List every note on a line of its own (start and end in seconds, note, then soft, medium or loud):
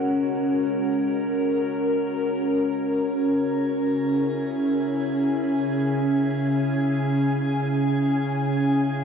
0.00 2.90 C#3 medium
0.00 2.89 G#3 medium
0.00 9.04 C#4 medium
0.00 5.40 F#4 medium
0.00 3.87 A#4 medium
2.79 9.04 C#3 medium
2.79 9.04 G#6 medium
3.26 9.04 G#4 medium
3.91 8.81 E4 medium
4.37 9.04 G#5 medium
8.55 9.04 D#4 medium